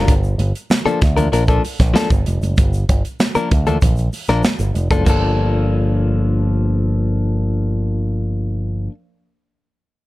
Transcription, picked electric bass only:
0, 0, Header, 1, 3, 480
1, 0, Start_track
1, 0, Key_signature, -2, "minor"
1, 0, Tempo, 621118
1, 63, Time_signature, 4, 2, 24, 8
1, 7780, End_track
2, 0, Start_track
2, 0, Title_t, "Picked electric bass"
2, 0, Program_c, 0, 34
2, 66, Note_on_c, 0, 31, 107
2, 262, Note_off_c, 0, 31, 0
2, 295, Note_on_c, 0, 31, 97
2, 397, Note_off_c, 0, 31, 0
2, 789, Note_on_c, 0, 38, 78
2, 985, Note_off_c, 0, 38, 0
2, 1024, Note_on_c, 0, 34, 94
2, 1222, Note_off_c, 0, 34, 0
2, 1388, Note_on_c, 0, 34, 95
2, 1486, Note_off_c, 0, 34, 0
2, 1628, Note_on_c, 0, 31, 97
2, 1727, Note_off_c, 0, 31, 0
2, 1749, Note_on_c, 0, 29, 93
2, 1847, Note_off_c, 0, 29, 0
2, 1864, Note_on_c, 0, 30, 87
2, 1964, Note_off_c, 0, 30, 0
2, 1994, Note_on_c, 0, 31, 93
2, 2189, Note_off_c, 0, 31, 0
2, 2233, Note_on_c, 0, 31, 94
2, 2330, Note_off_c, 0, 31, 0
2, 2718, Note_on_c, 0, 38, 91
2, 2911, Note_off_c, 0, 38, 0
2, 2955, Note_on_c, 0, 34, 86
2, 3150, Note_off_c, 0, 34, 0
2, 3313, Note_on_c, 0, 34, 89
2, 3410, Note_off_c, 0, 34, 0
2, 3550, Note_on_c, 0, 31, 82
2, 3648, Note_off_c, 0, 31, 0
2, 3667, Note_on_c, 0, 29, 84
2, 3766, Note_off_c, 0, 29, 0
2, 3792, Note_on_c, 0, 30, 85
2, 3890, Note_off_c, 0, 30, 0
2, 3914, Note_on_c, 0, 31, 99
2, 6855, Note_off_c, 0, 31, 0
2, 7780, End_track
3, 0, Start_track
3, 0, Title_t, "Muted picked electric bass strokes"
3, 665, Note_on_c, 9, 29, 49
3, 742, Note_off_c, 9, 29, 0
3, 2597, Note_on_c, 9, 29, 48
3, 2674, Note_off_c, 9, 29, 0
3, 7780, End_track
0, 0, End_of_file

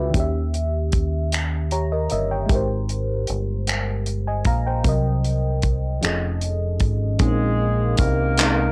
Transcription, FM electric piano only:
0, 0, Header, 1, 2, 480
1, 0, Start_track
1, 0, Tempo, 784314
1, 88, Time_signature, 6, 3, 24, 8
1, 5336, End_track
2, 0, Start_track
2, 0, Title_t, "FM electric piano"
2, 0, Program_c, 0, 5
2, 0, Control_c, 0, 64, 127
2, 0, Note_on_c, 0, 64, 55
2, 0, Note_on_c, 0, 66, 44
2, 0, Note_on_c, 0, 69, 53
2, 0, Note_on_c, 0, 71, 52
2, 0, Note_on_c, 0, 74, 64
2, 0, Note_on_c, 0, 76, 60
2, 0, Note_on_c, 0, 79, 52
2, 63, Note_off_c, 0, 64, 0
2, 64, Note_on_c, 0, 51, 63
2, 83, Note_on_c, 0, 61, 57
2, 95, Control_c, 0, 64, 0
2, 96, Note_off_c, 0, 69, 0
2, 97, Note_off_c, 0, 76, 0
2, 99, Note_off_c, 0, 79, 0
2, 101, Note_off_c, 0, 74, 0
2, 101, Note_on_c, 0, 67, 58
2, 121, Note_on_c, 0, 76, 74
2, 199, Note_off_c, 0, 71, 0
2, 200, Note_off_c, 0, 66, 0
2, 203, Control_c, 0, 64, 127
2, 1035, Note_off_c, 0, 67, 0
2, 1045, Note_off_c, 0, 76, 0
2, 1053, Note_on_c, 0, 73, 55
2, 1054, Note_on_c, 0, 82, 62
2, 1056, Note_on_c, 0, 67, 45
2, 1164, Note_off_c, 0, 73, 0
2, 1166, Note_off_c, 0, 67, 0
2, 1175, Note_on_c, 0, 75, 60
2, 1180, Note_on_c, 0, 70, 52
2, 1274, Note_off_c, 0, 82, 0
2, 1285, Note_off_c, 0, 75, 0
2, 1288, Note_off_c, 0, 70, 0
2, 1295, Note_on_c, 0, 75, 64
2, 1295, Note_on_c, 0, 76, 58
2, 1298, Note_on_c, 0, 70, 56
2, 1405, Note_off_c, 0, 76, 0
2, 1407, Note_off_c, 0, 70, 0
2, 1415, Note_on_c, 0, 79, 57
2, 1419, Note_on_c, 0, 73, 45
2, 1491, Note_off_c, 0, 51, 0
2, 1501, Note_off_c, 0, 61, 0
2, 1506, Note_on_c, 0, 56, 61
2, 1514, Note_off_c, 0, 75, 0
2, 1524, Note_on_c, 0, 67, 58
2, 1536, Control_c, 0, 64, 0
2, 1542, Note_on_c, 0, 70, 58
2, 1561, Note_on_c, 0, 72, 70
2, 1639, Note_off_c, 0, 79, 0
2, 1641, Note_off_c, 0, 73, 0
2, 1655, Control_c, 0, 64, 127
2, 2486, Note_off_c, 0, 72, 0
2, 2616, Note_on_c, 0, 80, 52
2, 2619, Note_on_c, 0, 75, 45
2, 2726, Note_off_c, 0, 80, 0
2, 2727, Note_off_c, 0, 75, 0
2, 2733, Note_on_c, 0, 82, 63
2, 2737, Note_on_c, 0, 77, 54
2, 2844, Note_off_c, 0, 82, 0
2, 2846, Note_off_c, 0, 77, 0
2, 2855, Note_on_c, 0, 79, 57
2, 2860, Note_on_c, 0, 72, 45
2, 2932, Note_off_c, 0, 56, 0
2, 2941, Note_off_c, 0, 67, 0
2, 2950, Note_off_c, 0, 70, 0
2, 2962, Note_on_c, 0, 48, 61
2, 2971, Note_on_c, 0, 54, 58
2, 2977, Control_c, 0, 64, 0
2, 2980, Note_on_c, 0, 70, 58
2, 2991, Note_on_c, 0, 75, 69
2, 3075, Control_c, 0, 64, 127
2, 3080, Note_off_c, 0, 79, 0
2, 3082, Note_off_c, 0, 72, 0
2, 3681, Note_on_c, 0, 53, 63
2, 3685, Note_off_c, 0, 48, 0
2, 3688, Note_on_c, 0, 61, 56
2, 3689, Note_off_c, 0, 54, 0
2, 3693, Note_on_c, 0, 68, 54
2, 3694, Note_off_c, 0, 70, 0
2, 3694, Control_c, 0, 64, 0
2, 3699, Note_off_c, 0, 75, 0
2, 3700, Note_on_c, 0, 69, 55
2, 3708, Note_on_c, 0, 75, 62
2, 3809, Control_c, 0, 64, 127
2, 4404, Note_off_c, 0, 53, 0
2, 4406, Note_off_c, 0, 61, 0
2, 4409, Note_on_c, 0, 56, 56
2, 4410, Note_off_c, 0, 68, 0
2, 4413, Note_on_c, 0, 60, 52
2, 4413, Note_on_c, 0, 61, 50
2, 4414, Note_off_c, 0, 69, 0
2, 4415, Control_c, 0, 64, 0
2, 4416, Note_on_c, 0, 63, 55
2, 4418, Note_off_c, 0, 75, 0
2, 4507, Control_c, 0, 64, 127
2, 5129, Note_off_c, 0, 56, 0
2, 5131, Note_off_c, 0, 60, 0
2, 5134, Note_off_c, 0, 61, 0
2, 5134, Note_off_c, 0, 63, 0
2, 5137, Note_on_c, 0, 56, 46
2, 5139, Note_on_c, 0, 60, 45
2, 5141, Note_on_c, 0, 61, 42
2, 5141, Note_on_c, 0, 63, 52
2, 5336, Note_off_c, 0, 56, 0
2, 5336, Note_off_c, 0, 60, 0
2, 5336, Note_off_c, 0, 61, 0
2, 5336, Note_off_c, 0, 63, 0
2, 5336, End_track
0, 0, End_of_file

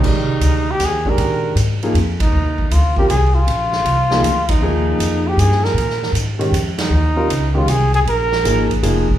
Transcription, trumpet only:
0, 0, Header, 1, 2, 480
1, 0, Start_track
1, 0, Tempo, 381922
1, 52, Time_signature, 3, 2, 24, 8
1, 11545, End_track
2, 0, Start_track
2, 0, Title_t, "Trumpet"
2, 0, Program_c, 0, 56
2, 0, Note_on_c, 0, 63, 90
2, 890, Note_on_c, 0, 67, 88
2, 909, Note_off_c, 0, 63, 0
2, 1066, Note_on_c, 0, 68, 82
2, 1085, Note_off_c, 0, 67, 0
2, 1375, Note_on_c, 0, 70, 80
2, 1394, Note_off_c, 0, 68, 0
2, 1996, Note_off_c, 0, 70, 0
2, 2789, Note_on_c, 0, 63, 80
2, 3424, Note_on_c, 0, 65, 81
2, 3443, Note_off_c, 0, 63, 0
2, 3735, Note_off_c, 0, 65, 0
2, 3743, Note_on_c, 0, 67, 81
2, 3882, Note_off_c, 0, 67, 0
2, 3889, Note_on_c, 0, 68, 78
2, 4202, Note_on_c, 0, 65, 88
2, 4221, Note_off_c, 0, 68, 0
2, 5652, Note_on_c, 0, 63, 78
2, 5671, Note_off_c, 0, 65, 0
2, 6634, Note_on_c, 0, 67, 89
2, 6652, Note_off_c, 0, 63, 0
2, 6780, Note_on_c, 0, 68, 87
2, 6799, Note_off_c, 0, 67, 0
2, 7093, Note_on_c, 0, 70, 90
2, 7112, Note_off_c, 0, 68, 0
2, 7736, Note_off_c, 0, 70, 0
2, 8547, Note_on_c, 0, 63, 82
2, 9447, Note_off_c, 0, 63, 0
2, 9518, Note_on_c, 0, 65, 78
2, 9671, Note_on_c, 0, 68, 90
2, 9690, Note_off_c, 0, 65, 0
2, 9978, Note_off_c, 0, 68, 0
2, 9990, Note_on_c, 0, 68, 91
2, 10059, Note_off_c, 0, 68, 0
2, 10169, Note_on_c, 0, 70, 100
2, 11059, Note_off_c, 0, 70, 0
2, 11545, End_track
0, 0, End_of_file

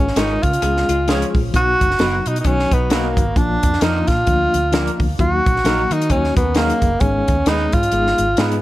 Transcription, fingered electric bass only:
0, 0, Header, 1, 2, 480
1, 0, Start_track
1, 0, Key_signature, -6, "minor"
1, 0, Tempo, 456274
1, 1618, Time_signature, 4, 2, 24, 8
1, 9067, End_track
2, 0, Start_track
2, 0, Title_t, "Fingered electric bass"
2, 0, Program_c, 0, 33
2, 0, Note_on_c, 0, 32, 83
2, 124, Note_off_c, 0, 32, 0
2, 171, Note_on_c, 0, 32, 81
2, 380, Note_off_c, 0, 32, 0
2, 455, Note_on_c, 0, 49, 93
2, 602, Note_off_c, 0, 49, 0
2, 657, Note_on_c, 0, 37, 83
2, 864, Note_off_c, 0, 37, 0
2, 933, Note_on_c, 0, 37, 79
2, 1288, Note_off_c, 0, 37, 0
2, 1416, Note_on_c, 0, 34, 82
2, 1563, Note_off_c, 0, 34, 0
2, 1615, Note_on_c, 0, 35, 106
2, 1823, Note_off_c, 0, 35, 0
2, 1905, Note_on_c, 0, 30, 81
2, 2049, Note_off_c, 0, 30, 0
2, 2098, Note_on_c, 0, 30, 93
2, 2305, Note_off_c, 0, 30, 0
2, 2380, Note_on_c, 0, 47, 96
2, 2526, Note_off_c, 0, 47, 0
2, 2572, Note_on_c, 0, 35, 74
2, 2781, Note_off_c, 0, 35, 0
2, 2853, Note_on_c, 0, 35, 82
2, 3331, Note_on_c, 0, 32, 83
2, 3347, Note_off_c, 0, 35, 0
2, 3481, Note_off_c, 0, 32, 0
2, 3533, Note_on_c, 0, 34, 98
2, 3742, Note_off_c, 0, 34, 0
2, 3820, Note_on_c, 0, 41, 88
2, 3966, Note_off_c, 0, 41, 0
2, 4014, Note_on_c, 0, 41, 82
2, 4223, Note_off_c, 0, 41, 0
2, 4294, Note_on_c, 0, 46, 89
2, 4442, Note_off_c, 0, 46, 0
2, 4490, Note_on_c, 0, 38, 85
2, 4701, Note_off_c, 0, 38, 0
2, 4776, Note_on_c, 0, 38, 86
2, 5131, Note_off_c, 0, 38, 0
2, 5254, Note_on_c, 0, 38, 78
2, 5403, Note_off_c, 0, 38, 0
2, 5460, Note_on_c, 0, 39, 99
2, 5667, Note_off_c, 0, 39, 0
2, 5748, Note_on_c, 0, 34, 88
2, 5892, Note_off_c, 0, 34, 0
2, 5936, Note_on_c, 0, 34, 78
2, 6144, Note_off_c, 0, 34, 0
2, 6212, Note_on_c, 0, 51, 98
2, 6415, Note_on_c, 0, 39, 94
2, 6430, Note_off_c, 0, 51, 0
2, 6623, Note_off_c, 0, 39, 0
2, 6696, Note_on_c, 0, 39, 89
2, 7051, Note_off_c, 0, 39, 0
2, 7172, Note_on_c, 0, 30, 80
2, 7321, Note_off_c, 0, 30, 0
2, 7372, Note_on_c, 0, 32, 94
2, 7582, Note_off_c, 0, 32, 0
2, 7661, Note_on_c, 0, 39, 94
2, 7807, Note_off_c, 0, 39, 0
2, 7851, Note_on_c, 0, 39, 78
2, 8061, Note_off_c, 0, 39, 0
2, 8132, Note_on_c, 0, 44, 99
2, 8282, Note_off_c, 0, 44, 0
2, 8331, Note_on_c, 0, 32, 78
2, 8541, Note_off_c, 0, 32, 0
2, 8614, Note_on_c, 0, 32, 83
2, 8763, Note_off_c, 0, 32, 0
2, 8812, Note_on_c, 0, 44, 93
2, 9022, Note_off_c, 0, 44, 0
2, 9067, End_track
0, 0, End_of_file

